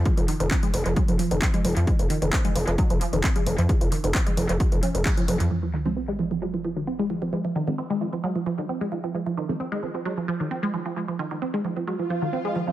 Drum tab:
HH |xxoxxxoxxxoxxxox|xxoxxxoxxxoxxxox|xxoxxxoxxxoxxxox|----------------|
CP |----x-------x---|----x-------x---|----x-------x---|----------------|
T2 |-----o---oo--oo-|-----o---oo--oo-|-----o---oo--oo-|----------------|
BD |o---o---o---o---|o---o---o---o---|o---o---o---o---|----------------|

HH |----------------|----------------|----------------|
CP |----------------|----------------|----------------|
T2 |----------------|----------------|----------------|
BD |----------------|----------------|----------------|